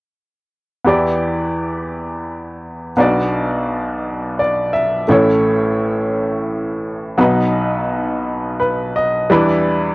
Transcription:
0.85 2.93 E2 soft
0.85 2.93 E3 soft
0.85 2.92 B3 soft
0.85 2.93 E4 soft
0.85 2.93 G4 soft
0.85 2.94 D5 soft
2.97 5.04 B1 soft
2.97 5.04 B2 soft
2.97 5.03 B3 soft
2.97 5.04 D4 soft
2.97 5.05 F#4 soft
2.97 4.38 D5 soft
4.39 4.71 D5 soft
4.73 5.05 E5 soft
5.08 7.15 A1 soft
5.08 7.15 A2 soft
5.08 7.14 A3 soft
5.08 7.15 C#4 soft
5.08 7.15 E4 soft
5.08 7.16 C#5 medium
7.18 9.26 B1 soft
7.18 9.26 B2 soft
7.18 9.25 F#3 soft
7.18 9.25 B3 soft
7.18 9.26 D#4 soft
7.18 8.58 B4 medium
8.60 8.92 B4 soft
8.96 9.28 D#5 medium
9.30 9.95 E2 soft
9.30 9.95 E3 medium
9.30 9.95 G3 medium
9.30 9.95 D4 medium
9.30 9.95 E4 soft
9.30 9.95 B4 medium

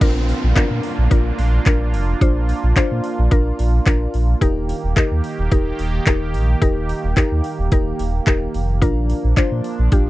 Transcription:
0.01 0.33 A#1 loud
0.01 4.38 A#3 medium
0.01 4.38 D4 medium
0.01 0.42 D4 loud
0.01 4.37 F4 medium
0.01 0.42 F4 medium
0.01 0.42 A#4 loud
0.01 kick loud
0.01 closed hi-hat medium
0.01 crash loud
0.01 downlifter medium
0.29 open hi-hat medium
0.44 0.53 A#1 medium
0.56 0.62 A#2 medium
0.56 0.97 D4 loud
0.56 0.97 F4 medium
0.56 0.97 A#4 loud
0.56 kick loud
0.56 clap loud
0.56 closed hi-hat medium
0.71 0.81 A#2 loud
0.83 open hi-hat medium
0.98 1.08 A#1 medium
1.11 1.32 A#1 medium
1.11 1.52 D4 medium
1.11 1.52 F4 medium
1.11 1.52 A#4 loud
1.11 kick loud
1.11 closed hi-hat medium
1.39 1.60 A#1 loud
1.39 open hi-hat medium
1.66 1.95 A#1 medium
1.66 2.07 D4 medium
1.66 2.07 F4 medium
1.66 2.07 A#4 loud
1.66 kick loud
1.66 clap loud
1.66 closed hi-hat medium
1.94 2.15 F1 medium
1.94 open hi-hat medium
2.21 2.53 A#1 loud
2.21 2.62 D4 medium
2.21 2.62 F4 medium
2.21 2.62 C5 loud
2.21 kick loud
2.21 closed hi-hat medium
2.49 open hi-hat medium
2.63 2.73 A#1 loud
2.76 2.82 A#2 medium
2.76 3.17 D4 loud
2.76 3.17 F4 medium
2.76 3.18 C5 loud
2.76 kick loud
2.76 clap loud
2.76 closed hi-hat medium
2.91 3.01 A#2 medium
3.04 open hi-hat medium
3.19 3.28 A#1 loud
3.31 3.52 A#1 loud
3.31 3.72 D4 medium
3.31 3.72 F4 medium
3.31 3.73 A#4 loud
3.31 kick loud
3.31 closed hi-hat medium
3.59 3.80 A#1 loud
3.59 open hi-hat medium
3.86 4.07 A#1 loud
3.86 4.27 D4 medium
3.86 4.27 F4 medium
3.86 4.28 A#4 loud
3.86 kick loud
3.86 clap loud
3.86 closed hi-hat medium
4.14 4.35 A#1 medium
4.14 open hi-hat medium
4.41 4.73 D#1 loud
4.41 8.78 D#3 medium
4.41 10.10 A#3 medium
4.41 4.82 D#4 medium
4.41 8.78 G4 medium
4.41 4.83 G4 medium
4.41 4.83 A#4 loud
4.41 kick loud
4.41 closed hi-hat medium
4.69 open hi-hat medium
4.84 4.94 D#1 medium
4.96 5.03 D#2 soft
4.96 5.37 D#4 loud
4.96 5.38 G4 medium
4.96 5.38 A#4 loud
4.96 kick loud
4.96 clap loud
4.96 closed hi-hat medium
5.11 5.21 D#2 loud
5.24 open hi-hat medium
5.39 5.48 D#1 medium
5.51 5.72 D#1 loud
5.51 5.93 D#4 medium
5.51 5.93 G4 medium
5.51 5.93 A#4 medium
5.51 kick loud
5.51 closed hi-hat medium
5.79 6.00 D#1 medium
5.79 open hi-hat medium
6.06 6.36 D#1 medium
6.06 6.48 D#4 medium
6.06 6.48 G4 medium
6.06 6.48 A#4 loud
6.06 kick loud
6.06 clap loud
6.06 closed hi-hat medium
6.34 6.55 A#1 medium
6.34 open hi-hat medium
6.62 6.94 D#1 loud
6.62 7.03 D#4 medium
6.62 7.03 G4 medium
6.62 7.03 A#4 loud
6.62 kick loud
6.62 closed hi-hat medium
6.89 open hi-hat medium
7.04 7.14 D#1 medium
7.17 7.23 D#2 soft
7.17 7.58 D#4 medium
7.17 7.58 G4 medium
7.17 7.58 A#4 loud
7.17 kick loud
7.17 clap loud
7.17 closed hi-hat medium
7.32 7.41 D#2 medium
7.44 open hi-hat medium
7.59 7.69 D#1 medium
7.72 7.93 D#1 medium
7.72 8.13 D#4 medium
7.72 8.13 G4 medium
7.72 8.13 A#4 loud
7.72 kick loud
7.72 closed hi-hat medium
7.99 8.20 D#1 loud
7.99 open hi-hat medium
8.27 8.48 D#1 medium
8.27 8.68 D#4 medium
8.27 8.68 G4 medium
8.27 8.68 A#4 loud
8.27 kick loud
8.27 clap loud
8.27 closed hi-hat medium
8.54 8.84 F1 medium
8.54 open hi-hat medium
8.82 9.14 A#1 loud
8.82 10.10 F3 medium
8.82 9.23 D4 medium
8.82 10.10 D4 medium
8.82 9.23 F4 medium
8.82 9.23 A#4 loud
8.82 kick loud
8.82 closed hi-hat medium
9.10 open hi-hat medium
9.24 9.34 A#1 medium
9.37 9.43 A#2 medium
9.37 9.78 D4 loud
9.37 9.78 F4 medium
9.37 9.78 C5 loud
9.37 kick loud
9.37 clap loud
9.37 closed hi-hat medium
9.52 9.61 A#2 loud
9.64 open hi-hat medium
9.79 9.89 A#1 medium
9.92 10.10 A#1 medium
9.92 10.10 D4 medium
9.92 10.10 F4 medium
9.92 10.10 G4 medium
9.92 kick loud
9.92 closed hi-hat medium

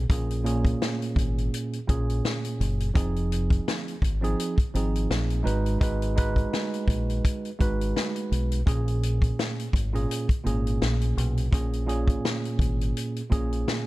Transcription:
0.09 0.73 A#1 loud
0.09 0.42 A#2 medium
0.09 0.43 A#3 medium
0.09 0.43 C#4 medium
0.09 0.44 G#4 loud
0.09 kick loud
0.09 closed hi-hat medium
0.31 closed hi-hat medium
0.44 1.77 A#2 medium
0.44 1.78 A#3 medium
0.44 1.78 C#4 medium
0.44 1.79 G#4 medium
0.44 closed hi-hat medium
0.65 kick medium
0.65 closed hi-hat soft
0.82 snare loud
0.82 snare medium
1.02 closed hi-hat medium
1.16 1.48 G#1 medium
1.16 kick medium
1.16 closed hi-hat medium
1.38 closed hi-hat soft
1.54 closed hi-hat medium
1.73 closed hi-hat soft
1.87 2.20 A#1 medium
1.87 2.87 A#2 medium
1.87 2.88 A#3 medium
1.87 2.88 C#4 medium
1.87 2.89 G#4 loud
1.87 kick loud
1.87 closed hi-hat medium
2.10 closed hi-hat medium
2.25 snare loud
2.25 snare medium
2.45 closed hi-hat medium
2.60 2.92 F#1 loud
2.60 closed hi-hat medium
2.80 closed hi-hat medium
2.94 3.59 F1 loud
2.94 3.94 F3 medium
2.94 3.95 C4 medium
2.94 3.95 D#4 medium
2.94 3.96 G#4 loud
2.94 kick loud
2.94 closed hi-hat medium
3.16 closed hi-hat medium
3.32 closed hi-hat medium
3.50 kick medium
3.50 closed hi-hat medium
3.68 snare loud
3.68 snare medium
3.88 closed hi-hat medium
4.02 4.34 G#1 medium
4.02 kick medium
4.02 closed hi-hat medium
4.22 4.55 F3 medium
4.22 4.55 C4 medium
4.22 4.55 D#4 medium
4.22 4.56 G#4 loud
4.22 closed hi-hat medium
4.40 closed hi-hat loud
4.58 kick medium
4.58 closed hi-hat soft
4.74 5.06 G#1 medium
4.74 5.46 F3 medium
4.74 5.46 C4 medium
4.74 5.43 D#4 medium
4.74 5.47 G#4 medium
4.74 closed hi-hat medium
4.96 closed hi-hat medium
5.10 5.42 A#1 loud
5.10 snare loud
5.10 snare medium
5.30 closed hi-hat medium
5.43 5.77 G#1 loud
5.43 5.78 G#3 medium
5.43 5.78 D#4 medium
5.43 5.78 F#4 medium
5.43 5.79 B4 medium
5.43 closed hi-hat medium
5.66 closed hi-hat medium
5.80 6.44 G#1 loud
5.80 6.14 G#3 medium
5.80 6.15 D#4 medium
5.80 6.15 F#4 medium
5.80 6.15 B4 loud
5.80 kick loud
5.80 closed hi-hat medium
6.02 closed hi-hat medium
6.16 7.49 G#3 medium
6.16 7.50 D#4 medium
6.16 7.50 F#4 medium
6.16 7.50 B4 loud
6.16 kick loud
6.16 closed hi-hat medium
6.36 kick medium
6.36 closed hi-hat soft
6.53 snare loud
6.53 snare medium
6.74 closed hi-hat medium
6.88 7.20 A#1 medium
6.88 kick medium
6.88 closed hi-hat medium
7.10 closed hi-hat medium
7.25 kick loud
7.25 closed hi-hat loud
7.45 closed hi-hat soft
7.59 7.92 G#1 medium
7.59 8.59 G#3 medium
7.59 8.59 D#4 medium
7.59 8.60 F#4 medium
7.59 8.60 B4 loud
7.59 kick loud
7.59 closed hi-hat medium
7.81 closed hi-hat medium
7.96 snare loud
7.96 snare medium
8.16 closed hi-hat medium
8.32 8.63 B1 medium
8.32 closed hi-hat medium
8.52 closed hi-hat medium
8.66 9.30 A#1 loud
8.66 9.66 A#2 medium
8.66 9.66 A#3 medium
8.66 9.67 C#4 medium
8.66 9.67 G#4 loud
8.66 kick loud
8.66 closed hi-hat medium
8.88 closed hi-hat medium
9.03 closed hi-hat medium
9.22 kick medium
9.22 closed hi-hat medium
9.39 snare loud
9.39 snare medium
9.60 closed hi-hat medium
9.73 10.05 G#1 medium
9.73 kick medium
9.73 closed hi-hat medium
9.93 10.26 A#2 loud
9.93 10.26 A#3 medium
9.93 10.27 C#4 medium
9.93 10.27 G#4 loud
9.93 closed hi-hat medium
10.11 closed hi-hat medium
10.29 kick medium
10.29 closed hi-hat soft
10.44 10.77 G#1 medium
10.44 11.44 A#2 medium
10.44 11.45 A#3 medium
10.44 11.45 C#4 medium
10.44 11.46 G#4 loud
10.44 closed hi-hat medium
10.67 closed hi-hat medium
10.82 11.13 A#1 medium
10.82 snare loud
10.82 snare medium
11.01 closed hi-hat medium
11.17 11.49 B1 medium
11.17 closed hi-hat medium
11.37 closed hi-hat medium
11.52 12.16 A#1 loud
11.52 11.85 A#2 medium
11.52 11.86 A#3 medium
11.52 11.86 C#4 medium
11.52 11.87 G#4 loud
11.52 kick loud
11.52 closed hi-hat medium
11.73 closed hi-hat medium
11.86 13.20 A#2 medium
11.86 13.20 A#3 medium
11.86 13.21 C#4 medium
11.86 13.21 G#4 medium
11.86 closed hi-hat medium
12.08 kick medium
12.08 closed hi-hat soft
12.25 snare loud
12.25 snare medium
12.45 closed hi-hat medium
12.59 12.91 G#1 loud
12.59 kick medium
12.59 closed hi-hat medium
12.81 closed hi-hat medium
12.97 closed hi-hat loud
13.16 closed hi-hat soft
13.30 13.63 A#1 medium
13.30 13.87 A#2 medium
13.30 13.87 A#3 medium
13.30 13.87 C#4 medium
13.30 13.87 G#4 loud
13.30 kick loud
13.30 closed hi-hat medium
13.53 closed hi-hat medium
13.68 snare loud
13.68 snare medium

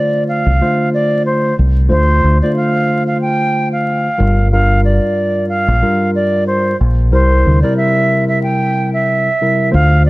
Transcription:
0.00 0.50 D3 medium
0.00 0.50 A3 medium
0.00 0.50 F4 medium
0.00 0.50 C5 loud
0.00 0.24 D5 medium
0.29 0.89 F5 medium
0.46 0.59 C2 medium
0.61 1.52 D3 medium
0.61 1.52 A3 medium
0.61 1.52 F4 medium
0.61 1.52 C5 loud
0.94 1.23 D5 medium
1.26 1.55 C5 medium
1.59 1.88 C2 medium
1.89 2.21 D2 loud
1.89 2.36 D3 medium
1.89 2.36 A3 medium
1.89 2.36 F4 medium
1.89 2.36 C5 loud
1.89 2.38 C5 loud
2.24 2.40 D2 medium
2.42 4.07 D3 medium
2.42 4.07 A3 medium
2.42 4.07 F4 medium
2.42 4.07 C5 loud
2.42 2.55 D5 medium
2.56 3.03 F5 medium
3.07 3.20 F5 medium
3.21 3.69 G5 medium
3.72 4.48 F5 medium
4.18 4.98 G1 medium
4.18 4.49 G2 medium
4.18 4.49 G3 medium
4.18 4.49 F4 medium
4.18 4.49 A#4 medium
4.52 5.73 G2 medium
4.52 5.73 G3 medium
4.52 5.73 F4 medium
4.52 5.73 A#4 medium
4.52 4.81 F5 loud
4.85 5.46 D5 medium
5.49 6.11 F5 medium
5.68 5.81 A#1 loud
5.82 6.73 G2 loud
5.82 6.73 G3 medium
5.82 6.73 F4 medium
5.82 6.73 A#4 loud
6.15 6.44 D5 medium
6.47 6.76 C5 medium
6.81 7.13 A#1 medium
7.12 7.43 C2 loud
7.12 7.58 C3 loud
7.12 7.58 G3 medium
7.12 7.59 E4 medium
7.12 7.59 A#4 loud
7.12 7.60 C5 loud
7.46 7.62 D2 medium
7.62 9.28 C3 loud
7.62 9.28 G3 medium
7.62 9.28 E4 medium
7.62 9.28 A#4 loud
7.62 7.76 D5 medium
7.77 8.25 E5 medium
8.28 8.42 E5 medium
8.43 8.90 G5 medium
8.94 9.70 E5 medium
9.41 9.71 C3 medium
9.41 9.71 G3 medium
9.41 9.72 E4 medium
9.41 9.72 A#4 medium
9.71 10.10 D2 loud
9.71 10.10 D3 medium
9.71 10.10 A3 medium
9.71 10.10 F4 medium
9.71 10.10 C5 loud
9.71 10.03 F5 loud
10.06 10.10 D5 medium

